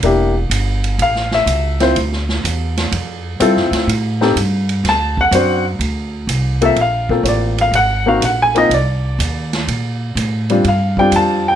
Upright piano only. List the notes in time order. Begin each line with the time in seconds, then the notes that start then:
0.03 A#3 D4 E4 G4
1.02 F5
1.34 E5
1.81 C4 E4 F4 C5
3.40 C4 E4 F4 A4
4.21 C4 D#4 G4 A4
4.89 A5
5.21 F#5
5.33 C4 D4 F#4 C5
6.61 A#3 C4 F4 A4 E5
6.81 F5
7.10 A#3 C4 F4 A4
7.24 C#5
7.28 D5
7.61 F5
7.75 F#5
8.06 A#3 C4 D#4 F#4 F5
8.25 F#5
8.42 G#5
8.55 A#3 C4 D#4 F4 D#5
8.74 D5
10.50 G3 C4 D4 F4
10.68 F5
10.98 G3 C4 D4 F4 G5
11.16 A5
11.48 G5